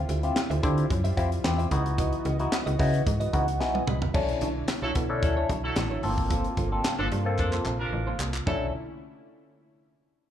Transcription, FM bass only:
0, 0, Header, 1, 2, 480
1, 0, Start_track
1, 0, Tempo, 540541
1, 1761, Time_signature, 4, 2, 24, 8
1, 9147, End_track
2, 0, Start_track
2, 0, Title_t, "FM bass"
2, 0, Program_c, 0, 39
2, 79, Note_on_c, 0, 38, 89
2, 273, Note_off_c, 0, 38, 0
2, 446, Note_on_c, 0, 38, 98
2, 538, Note_off_c, 0, 38, 0
2, 562, Note_on_c, 0, 50, 122
2, 755, Note_off_c, 0, 50, 0
2, 802, Note_on_c, 0, 42, 103
2, 995, Note_off_c, 0, 42, 0
2, 1041, Note_on_c, 0, 41, 88
2, 1234, Note_off_c, 0, 41, 0
2, 1283, Note_on_c, 0, 40, 102
2, 1476, Note_off_c, 0, 40, 0
2, 1521, Note_on_c, 0, 37, 112
2, 1908, Note_off_c, 0, 37, 0
2, 2002, Note_on_c, 0, 37, 103
2, 2195, Note_off_c, 0, 37, 0
2, 2368, Note_on_c, 0, 37, 104
2, 2459, Note_off_c, 0, 37, 0
2, 2481, Note_on_c, 0, 49, 98
2, 2674, Note_off_c, 0, 49, 0
2, 2722, Note_on_c, 0, 44, 95
2, 2915, Note_off_c, 0, 44, 0
2, 2961, Note_on_c, 0, 37, 99
2, 3202, Note_on_c, 0, 35, 97
2, 3215, Note_off_c, 0, 37, 0
2, 3395, Note_off_c, 0, 35, 0
2, 3441, Note_on_c, 0, 36, 99
2, 3635, Note_off_c, 0, 36, 0
2, 3680, Note_on_c, 0, 35, 105
2, 3874, Note_off_c, 0, 35, 0
2, 3921, Note_on_c, 0, 35, 95
2, 4115, Note_off_c, 0, 35, 0
2, 4283, Note_on_c, 0, 35, 94
2, 4376, Note_off_c, 0, 35, 0
2, 4401, Note_on_c, 0, 47, 99
2, 4641, Note_on_c, 0, 38, 98
2, 4654, Note_off_c, 0, 47, 0
2, 4835, Note_off_c, 0, 38, 0
2, 4880, Note_on_c, 0, 35, 106
2, 5074, Note_off_c, 0, 35, 0
2, 5118, Note_on_c, 0, 33, 107
2, 5313, Note_off_c, 0, 33, 0
2, 5360, Note_on_c, 0, 31, 102
2, 5747, Note_off_c, 0, 31, 0
2, 5836, Note_on_c, 0, 31, 93
2, 6032, Note_off_c, 0, 31, 0
2, 6208, Note_on_c, 0, 31, 87
2, 6299, Note_off_c, 0, 31, 0
2, 6321, Note_on_c, 0, 43, 100
2, 6562, Note_on_c, 0, 41, 96
2, 6575, Note_off_c, 0, 43, 0
2, 6755, Note_off_c, 0, 41, 0
2, 6798, Note_on_c, 0, 34, 102
2, 6993, Note_off_c, 0, 34, 0
2, 7039, Note_on_c, 0, 33, 101
2, 7233, Note_off_c, 0, 33, 0
2, 7277, Note_on_c, 0, 36, 93
2, 7472, Note_off_c, 0, 36, 0
2, 7521, Note_on_c, 0, 35, 109
2, 7744, Note_off_c, 0, 35, 0
2, 9147, End_track
0, 0, End_of_file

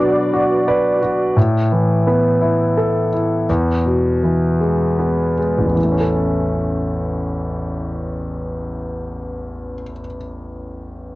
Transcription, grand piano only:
0, 0, Header, 1, 2, 480
1, 0, Start_track
1, 0, Key_signature, 3, "major"
1, 0, Tempo, 696056
1, 941, Time_signature, 6, 3, 24, 8
1, 1906, Tempo, 740741
1, 3346, Tempo, 808625
1, 7006, End_track
2, 0, Start_track
2, 0, Title_t, "Grand piano"
2, 0, Program_c, 0, 0
2, 0, Control_c, 0, 64, 127
2, 0, Note_on_c, 0, 47, 52
2, 0, Note_on_c, 0, 54, 35
2, 0, Note_on_c, 0, 62, 42
2, 231, Note_on_c, 0, 66, 39
2, 469, Note_on_c, 0, 71, 42
2, 469, Note_on_c, 0, 74, 50
2, 677, Note_off_c, 0, 54, 0
2, 693, Note_off_c, 0, 66, 0
2, 704, Note_on_c, 0, 66, 36
2, 915, Note_off_c, 0, 47, 0
2, 916, Note_off_c, 0, 62, 0
2, 916, Note_off_c, 0, 74, 0
2, 929, Note_off_c, 0, 71, 0
2, 934, Note_off_c, 0, 66, 0
2, 942, Note_on_c, 0, 45, 51
2, 951, Control_c, 0, 64, 0
2, 1071, Control_c, 0, 64, 127
2, 1185, Note_on_c, 0, 52, 37
2, 1427, Note_on_c, 0, 59, 42
2, 1662, Note_on_c, 0, 64, 41
2, 1912, Note_on_c, 0, 69, 39
2, 2115, Note_off_c, 0, 52, 0
2, 2136, Note_off_c, 0, 64, 0
2, 2146, Note_on_c, 0, 64, 38
2, 2347, Note_off_c, 0, 45, 0
2, 2350, Note_off_c, 0, 59, 0
2, 2362, Note_off_c, 0, 69, 0
2, 2370, Note_off_c, 0, 64, 0
2, 2378, Note_on_c, 0, 40, 47
2, 2380, Control_c, 0, 64, 0
2, 2506, Control_c, 0, 64, 127
2, 2613, Note_on_c, 0, 47, 36
2, 2858, Note_on_c, 0, 52, 37
2, 3100, Note_on_c, 0, 56, 34
2, 3347, Note_on_c, 0, 59, 34
2, 3557, Note_off_c, 0, 47, 0
2, 3575, Note_off_c, 0, 56, 0
2, 3584, Note_on_c, 0, 56, 32
2, 3698, Note_on_c, 0, 33, 33
2, 3739, Note_off_c, 0, 40, 0
2, 3748, Note_on_c, 0, 40, 29
2, 3789, Note_off_c, 0, 52, 0
2, 3798, Note_on_c, 0, 52, 31
2, 3804, Note_off_c, 0, 59, 0
2, 3813, Note_off_c, 0, 56, 0
2, 3824, Control_c, 0, 64, 0
2, 3847, Note_on_c, 0, 57, 33
2, 3899, Note_on_c, 0, 61, 34
2, 3921, Control_c, 0, 64, 127
2, 3949, Note_on_c, 0, 69, 35
2, 6160, Note_off_c, 0, 33, 0
2, 6210, Note_off_c, 0, 40, 0
2, 6260, Note_off_c, 0, 52, 0
2, 6309, Note_off_c, 0, 57, 0
2, 6361, Note_off_c, 0, 61, 0
2, 6411, Note_off_c, 0, 69, 0
2, 7006, End_track
0, 0, End_of_file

